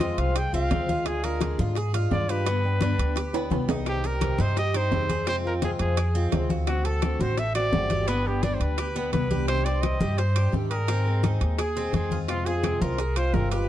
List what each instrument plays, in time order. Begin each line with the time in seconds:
Already playing: upright bass F2, trumpet D#5
0.00 steel-string acoustic guitar C3 F3 G#3 C4 F4, cuban tres F4, high bongo, high conga, high timbale
0.17 upright bass C2, trumpet F5, high bongo, high conga, high timbale
0.35 cuban tres G#4, trumpet G5, muted steel-string acoustic guitar stroke, high bongo, high conga, high timbale
0.53 upright bass C2, steel-string acoustic guitar G#3 C4 F4, cuban tres C4, trumpet F5, high bongo, high conga
0.70 upright bass D2, steel-string acoustic guitar C3 F3 G#3 C4 F4, high bongo, low bongo, high conga, high timbale, low timbale
0.87 steel-string acoustic guitar G#3 C4 F4, cuban tres F4, high bongo, high conga
1.05 steel-string acoustic guitar D3 G#3 D4 F4, trumpet G#4, high bongo, high conga, high timbale
1.23 steel-string acoustic guitar G#3 D4 F4, cuban tres G#4, trumpet A#4, high conga, high timbale
1.41 steel-string acoustic guitar D3 G#3 D4 F4, high bongo, high conga, high timbale
1.58 upright bass G#2, cuban tres F4, high bongo, high conga
1.75 cuban tres G#4, muted steel-string acoustic guitar stroke, high bongo, high conga, high timbale
1.93 steel-string acoustic guitar G#3 D4 F4, cuban tres F4, high bongo, high conga, high timbale
2.11 upright bass G2, steel-string acoustic guitar D3 G#3 D4 F4, trumpet D5, high bongo, low bongo, high conga, low timbale
2.28 steel-string acoustic guitar G#3 D4 F4, cuban tres G4, trumpet B4, high bongo, high timbale
2.46 steel-string acoustic guitar D3 G3 B3 D4 G4, cuban tres B3, high bongo, high conga, high timbale
2.63 steel-string acoustic guitar B3 D4 G4, high conga
2.80 steel-string acoustic guitar D3 G3 B3 D4 G4, cuban tres D4, high bongo, high conga, high timbale
2.98 upright bass D2, high bongo, high conga, high timbale
3.16 cuban tres G4, muted steel-string acoustic guitar stroke, high bongo, high conga, high timbale
3.33 cuban tres B3, steel-string acoustic guitar B3 D4 G4, high bongo, high conga, high timbale
3.50 upright bass C2, steel-string acoustic guitar D3 G3 B3 D4 G4, high bongo, low bongo, high conga, high timbale
3.68 steel-string acoustic guitar B3 D4 G4, cuban tres D#4, high bongo, high conga, low timbale
3.86 steel-string acoustic guitar C3 D#3 G3 C4 G4, trumpet G4, high bongo, high conga, high timbale, claves
4.03 steel-string acoustic guitar C4 G4, cuban tres G4, trumpet A#4, high conga, high timbale
4.21 steel-string acoustic guitar C3 D#3 G3 C4 G4, high bongo, high conga, high timbale, claves
4.38 upright bass G2, cuban tres D#4, trumpet C5, high bongo, high conga
4.56 cuban tres G4, trumpet D#5, muted steel-string acoustic guitar stroke, high bongo, high conga, high timbale
4.74 steel-string acoustic guitar G3 C4 G4, cuban tres D#4, trumpet C5, high bongo, high conga, high timbale, claves
4.91 upright bass F2, steel-string acoustic guitar C3 D#3 G3 C4 G4, high bongo, low bongo, high conga, low timbale
5.09 steel-string acoustic guitar G3 C4 G4, cuban tres G#4, high bongo, high conga, high timbale
5.26 steel-string acoustic guitar C3 F3 G#3 C4 F4, cuban tres C4, trumpet C5, high bongo, high conga, high timbale, claves
5.44 steel-string acoustic guitar G#3 C4 F4, trumpet A#4, high conga
5.62 steel-string acoustic guitar C3 F3 G#3 C4 F4, cuban tres F4, trumpet G#4, high bongo, high conga, high timbale
5.79 upright bass F2, trumpet G#4, high bongo, high conga, high timbale
5.97 cuban tres G#4, muted steel-string acoustic guitar stroke, high bongo, high conga, high timbale, claves
6.14 steel-string acoustic guitar G#3 C4 F4, cuban tres C4, high bongo, high conga
6.32 upright bass D2, steel-string acoustic guitar C3 F3 G#3 C4 F4, high bongo, low bongo, high conga, high timbale, low timbale
6.50 steel-string acoustic guitar G#3 C4 F4, cuban tres F#4, high bongo, high conga
6.67 steel-string acoustic guitar D3 A3 C4 F#4, trumpet F#4, high bongo, high conga, high timbale, claves
6.85 steel-string acoustic guitar A3 C4 F#4, cuban tres A4, trumpet A4, high conga, high timbale
7.02 steel-string acoustic guitar D3 A3 C4 F#4, high bongo, high conga, high timbale, claves
7.19 upright bass A1, cuban tres F#4, trumpet C5, high bongo, high conga
7.37 cuban tres A4, trumpet E5, muted steel-string acoustic guitar stroke, high bongo, high conga, high timbale
7.55 steel-string acoustic guitar A3 C4 F#4, cuban tres F#4, trumpet D5, high bongo, high conga, high timbale, claves
7.72 upright bass G1, steel-string acoustic guitar D3 A3 C4 F#4, high bongo, low bongo, high conga, low timbale
7.90 steel-string acoustic guitar A3 C4 F#4, cuban tres G4, high bongo, high conga, high timbale
8.07 steel-string acoustic guitar D3 G3 B3 D4 G4, cuban tres B3, trumpet B4, high bongo, high timbale, claves
8.25 steel-string acoustic guitar B3 D4 G4, trumpet G4, high conga
8.43 steel-string acoustic guitar D3 G3 B3 D4 G4, cuban tres D4, trumpet D5, high bongo, high conga, high timbale
8.54 trumpet C5
8.60 upright bass D2, trumpet B4, high bongo, high conga, high timbale
8.78 cuban tres G4, muted steel-string acoustic guitar stroke, high bongo, high conga, high timbale, claves
8.95 cuban tres B3, steel-string acoustic guitar B3 D4 G4, high bongo, high conga
9.13 upright bass C2, steel-string acoustic guitar D3 G3 B3 D4 G4, trumpet B4, high bongo, low bongo, high conga, high timbale
9.30 steel-string acoustic guitar B3 D4 G4, cuban tres G4, high bongo, high conga
9.48 steel-string acoustic guitar C3 D#3 G3 D4 G4, trumpet C5, high bongo, high conga, high timbale, claves
9.65 steel-string acoustic guitar G3 D4 G4, cuban tres C5, trumpet D5, high conga, high timbale
9.82 steel-string acoustic guitar C3 D#3 G3 G4, trumpet D#5, high bongo, high conga, high timbale, claves
10.00 upright bass G2, cuban tres G4, high bongo, high conga
10.18 trumpet C5, cuban tres C5, muted steel-string acoustic guitar stroke, high bongo, high conga, high timbale
10.35 steel-string acoustic guitar G3 D4 G4, cuban tres G4, high bongo, high conga, high timbale, claves
10.52 upright bass G#2, steel-string acoustic guitar C3 D#3 G3 D4 G4, high bongo, low bongo, high conga
10.70 steel-string acoustic guitar G3 D4 G4, cuban tres G#4, trumpet A#4, high bongo, high timbale
10.87 steel-string acoustic guitar D#3 G#3 C4 G#4, cuban tres C4, high bongo, high conga, high timbale, claves
11.05 steel-string acoustic guitar G#3 C4 G#4, high conga
11.23 steel-string acoustic guitar D#3 G#3 C4 G#4, cuban tres D#4, high bongo, high conga, high timbale
11.41 upright bass D#2, high bongo, high conga, high timbale
11.58 cuban tres G#4, trumpet G#4, muted steel-string acoustic guitar stroke, high bongo, high conga, high timbale, claves
11.76 steel-string acoustic guitar G#3 C4 G#4, cuban tres C4, high bongo, high conga
11.93 upright bass F2, steel-string acoustic guitar D#3 G#3 C4 G#4, trumpet G#4, high bongo, low bongo, high conga, high timbale
12.11 steel-string acoustic guitar G#3 C4 G#4, cuban tres F4, high bongo, high conga
12.28 steel-string acoustic guitar C3 F3 G#3 C4 F4, trumpet F4, high bongo, high conga, high timbale, claves
12.46 steel-string acoustic guitar G#3 C4 F4, trumpet G#4, cuban tres G#4, high conga, high timbale
12.63 steel-string acoustic guitar C3 F3 G#3 C4 F4, high bongo, high conga, high timbale, claves
12.81 upright bass C2, cuban tres F4, trumpet A#4, high bongo, high conga
12.98 cuban tres G#4, muted steel-string acoustic guitar stroke, high bongo, high conga, high timbale
13.16 steel-string acoustic guitar G#3 C4 F4, cuban tres F4, trumpet C5, high bongo, high conga, high timbale, claves
13.34 upright bass G1, steel-string acoustic guitar C3 F3 G#3 C4 F4, trumpet A#4, high bongo, low bongo, high conga, low timbale
13.51 steel-string acoustic guitar G#3 C4 F4, cuban tres G4, trumpet B4, high bongo, high timbale